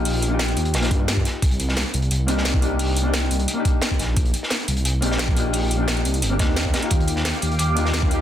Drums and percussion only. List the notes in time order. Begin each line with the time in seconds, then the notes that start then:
0.05 closed hi-hat, open hi-hat
0.22 closed hi-hat
0.39 snare, closed hi-hat
0.48 closed hi-hat
0.57 closed hi-hat
0.65 closed hi-hat
0.74 snare, closed hi-hat
0.82 snare, closed hi-hat
0.91 kick, closed hi-hat
1.08 snare, closed hi-hat
1.17 kick
1.25 snare, closed hi-hat
1.42 kick, closed hi-hat
1.51 closed hi-hat
1.60 closed hi-hat
1.69 snare
1.77 snare, closed hi-hat
1.86 closed hi-hat
1.94 closed hi-hat
2.02 closed hi-hat
2.11 closed hi-hat
2.28 closed hi-hat
2.38 snare
2.45 snare, closed hi-hat
2.54 kick
2.62 closed hi-hat
2.79 closed hi-hat, open hi-hat
2.97 closed hi-hat
3.13 snare, closed hi-hat
3.31 closed hi-hat
3.39 closed hi-hat
3.48 closed hi-hat
3.65 kick, closed hi-hat
3.82 snare, closed hi-hat
3.91 kick
3.99 snare, closed hi-hat
4.17 kick, closed hi-hat
4.26 closed hi-hat
4.34 closed hi-hat
4.43 snare
4.50 snare, closed hi-hat
4.59 closed hi-hat
4.68 closed hi-hat
4.77 closed hi-hat
4.85 closed hi-hat
5.02 closed hi-hat
5.11 snare
5.18 snare, closed hi-hat
5.28 kick
5.37 closed hi-hat
5.53 closed hi-hat, open hi-hat
5.71 closed hi-hat
5.88 snare, closed hi-hat
5.97 closed hi-hat
6.05 closed hi-hat
6.14 closed hi-hat
6.22 closed hi-hat
6.39 kick, snare, closed hi-hat
6.57 snare, closed hi-hat
6.65 kick
6.74 snare, closed hi-hat
6.83 closed hi-hat
6.91 kick, closed hi-hat
7.00 closed hi-hat
7.08 closed hi-hat
7.16 snare
7.25 snare, closed hi-hat
7.33 closed hi-hat
7.42 closed hi-hat
7.51 closed hi-hat
7.59 closed hi-hat
7.77 closed hi-hat
7.85 snare
7.93 snare, closed hi-hat
8.03 kick
8.11 closed hi-hat